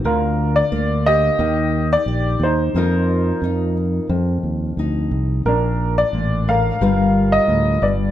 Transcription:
<<
  \new Staff \with { instrumentName = "Upright piano" } { \time 4/4 \key bes \major \tempo 4 = 89 << { bes'8. d''8. ees''4~ ees''16 d''8. c''8~ | c''4 r2. | bes'8. d''8. f''4~ f''16 ees''8. d''8 | } \\ { f'4. g'2 ees'8~ | ees'4. r2 r8 | d'4. bes'2 r8 | } >> }
  \new Staff \with { instrumentName = "Steel-string acoustic guitar" } { \clef bass \time 4/4 \key bes \major << { r4 bes4 r4 g'4 | <bes ees' f' bes'>4 ees'4 r4 ees'4 | r2 <g f'>2 | } \\ { d2 ees2 | f,2 f,2 | bes,4 bes,8 a,8 g,4 a,8 g,8 | } >> }
  \new Staff \with { instrumentName = "Fingered electric bass" } { \clef bass \time 4/4 \key bes \major d,4 d,4 ees,4 bes,,8 ees,8 | f,4 f,4 f,8 ees,8 d,8 c,8 | bes,,4 a,,4 g,,4 d,8 g,,8 | }
>>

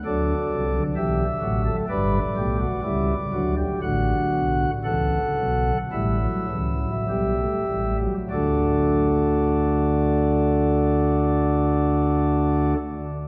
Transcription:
<<
  \new Staff \with { instrumentName = "Pipe organ" } { \time 4/4 \key d \major \tempo 4 = 54 << { d''4 e''4 d''2 | fis''4 fis''4 e''2 | <d' a' d''>1 | } \\ { a'4 g'8 fis'16 a'16 b'8 g'16 fis'16 e'8 fis'16 g'16 | fis'4 a'4 e'4 g'4 | fis'1 | } >> }
  \new Staff \with { instrumentName = "Pipe organ" } { \clef bass \time 4/4 \key d \major << { fis8. d16 e8 fis8 g8 a8 g8 fis8 | d4 e8 fis8 g16 fis16 e16 fis16 g16 a16 g16 fis16 | a1 | } \\ { <d, d>8 <c, c>8 <b,, b,>8 <a,, a,>8 <g,, g,>8 <b,, b,>8 <cis, cis>8 <d, d>8 | <a,, a,>8 <b,, b,>8 <cis, cis>8 <b,, b,>8 <a,, a,>8 <cis, cis>8 <b,, b,>8 <a,, a,>8 | <d, d>1 | } >> }
>>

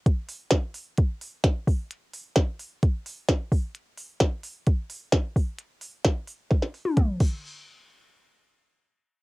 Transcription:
\new DrumStaff \with { instrumentName = "Drums" } \drummode { \time 4/4 \tempo 4 = 130 <hh bd>8 hho8 <hh bd sn>8 hho8 <hh bd>8 hho8 <hh bd sn>8 <hho bd>8 | hh8 hho8 <hh bd sn>8 hho8 <hh bd>8 hho8 <hh bd sn>8 <hho bd>8 | hh8 hho8 <hh bd sn>8 hho8 <hh bd>8 hho8 <hh bd sn>8 <hho bd>8 | hh8 hho8 <hh bd sn>8 hho8 <hh bd sn>16 sn16 hho16 tommh16 <hh bd toml>8 <cymc bd>8 |
r4 r4 r4 r4 | }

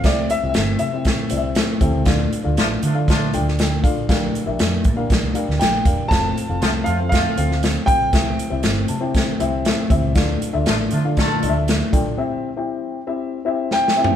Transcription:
<<
  \new Staff \with { instrumentName = "Vibraphone" } { \time 4/4 \key c \mixolydian \tempo 4 = 119 r1 | r1 | r1 | r1 |
r1 | r1 | r2. g''4 | }
  \new Staff \with { instrumentName = "Grand piano" } { \time 4/4 \key c \mixolydian d''8 e''4 e''4. r4 | r1 | r2. g''4 | a''4. f''8 f''4 r8 g''8~ |
g''4 r2. | r1 | r2. g''4 | }
  \new Staff \with { instrumentName = "Upright piano" } { \time 4/4 \key c \mixolydian << { r1 | r1 | r1 | r1 |
r4. a''8 g''4 e''4 | r1 | r1 | } \\ { <c' e' g' e''>8 r16 <c' e' g' ees'' e''>8. r16 <c' e' g' e''>8 r16 <c' e' g' d'' e''>8. r16 <c' e' g' a'>8 | <d' f' a' f''>8 r16 <d' f' a' f''>8. r16 <d' f' a' f''>8 r16 <d' f' a' g''>8. r16 <d' f' a' f''>8 | <d' g' bes' f''>8 r16 <d' g' bes' e''>8. r16 <d' g' bes' f''>8 r16 <d' g' bes' f''>8. r16 <d' g' bes' f''>8 | <c' f' a' f''>8 r16 <c' f' a' f''>8. r16 <c' f' a' c''>8 r16 <c' f' a' f''>8. r16 <c' f' a' f''>8 |
<c' e' g' e''>8 r16 <c' e' g' e''>8. r16 <c' e' g' g''>8 r16 <c' e' g' e''>8. r16 <c' e' g' e''>8 | <d' f' a' f''>8 r16 <d' f' a' e''>8. r16 <d' f' a' f''>8 r16 <d' f' a' ees'' e''>8. r16 <d' f' a' g''>8 | <c' e' g' e''>8 r16 <c' e' g' g''>8. r16 <c' e' g' e''>8 r16 <c' e' g' e''>8. r16 <c' e' g' e''>8 | } >> }
  \new Staff \with { instrumentName = "Horn section" } { \time 4/4 \key c \mixolydian r1 | r4 <f a d' f'>16 r16 <f a d' f'>16 r16 <f a d' f'>8. r4 r16 | r1 | r4 <f a c' f'>16 r16 <f a c' f'>16 r16 <f a c' f'>8. r4 r16 |
r1 | r4 <f a d' f'>16 r16 <f a d' f'>16 r16 <a d' f' a'>8. r4 r16 | r1 | }
  \new Staff \with { instrumentName = "Fingered electric bass" } { \clef bass \time 4/4 \key c \mixolydian c,8 r16 c,16 g,,8 c4 c,8. r16 d,16 des,16 | d,8 r16 d,16 a,,8 d4 d,4 a,,8 | bes,,8 r16 bes,,16 f,8 bes,8 bes,,16 c,16 r16 d,16 bes,,8 e,,16 r16 | f,,8 r16 f,,16 c,8 f,4 d,4 b,,8 |
c,8 r16 c,16 g,,8 c4 c,8. r16 d,16 des,16 | d,8 r16 d,16 a,,8 d4 d,4 b,,8 | r1 | }
  \new DrumStaff \with { instrumentName = "Drums" } \drummode { \time 4/4 <hh bd sn>8 hh8 <hh sn>8 hh8 <hh bd sn>8 hh8 <hh sn>8 <hh bd>8 | <hh bd sn>8 hh8 <hh sn>8 hh8 <hh bd sn>8 hh16 sn16 <hh sn>8 <hh bd>8 | <hh bd sn>8 hh8 <hh sn>8 <hh bd>8 <hh bd sn>8 hh16 sn16 <hh sn>8 <hh bd>8 | <hh bd sn>8 hh8 <hh sn>8 hh8 <hh bd sn>8 hh16 sn16 <hh sn>8 <hh bd>8 |
<hh bd sn>8 hh8 <hh sn>8 hh8 <hh bd sn>8 hh8 <hh sn>8 <hh bd>8 | <hh bd sn>8 hh8 <hh sn>8 hh8 <hh bd sn>8 hh8 <hh sn>8 <hh bd>8 | r4 r4 r4 \tuplet 3/2 { sn8 sn8 tomfh8 } | }
>>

